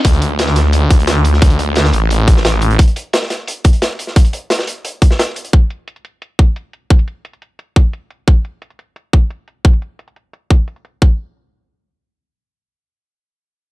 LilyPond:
<<
  \new Staff \with { instrumentName = "Detuned saw bass" } { \clef bass \time 4/4 \key c \mixolydian \tempo 4 = 175 d,2~ d,8 d,4. | d,4. a,,4. a,,4 | r1 | r1 |
r1 | r1 | r1 | r1 |
r1 | r1 | }
  \new DrumStaff \with { instrumentName = "Drums" } \drummode { \time 4/4 <hh bd>16 hh16 hh8 <hh sn>16 <hh sn>16 <hh sn>8 hh8 <hh bd>16 hh16 <hh sn>8 hh16 sn16 | <hh bd>16 hh16 hh8 <hh sn>16 <hh sn>16 hh8 hh8 <hh bd>16 sn16 <hh sn>8 hh16 hh16 | <hh bd>16 hh16 hh8 <hh sn>16 <hh sn>16 <hh sn>8 hh8 <hh bd>16 hh16 <hh sn>8 hh16 sn16 | <hh bd>16 hh16 hh8 <hh sn>16 <hh sn>16 hh8 hh8 <hh bd>16 sn16 <hh sn>8 hh16 hh16 |
<hh bd>8 hh8 hh16 hh16 hh8 hh8 <hh bd>8 hh8 hh8 | <hh bd>16 hh16 hh8 hh16 hh16 hh8 hh8 <hh bd>8 hh8 hh8 | <hh bd>8 hh8 hh16 hh16 hh8 hh8 <hh bd>8 hh8 hh8 | <hh bd>16 hh16 hh8 hh16 hh16 hh8 hh8 bd8 hh16 hh16 hh8 |
bd4 r4 r4 r4 | r4 r4 r4 r4 | }
>>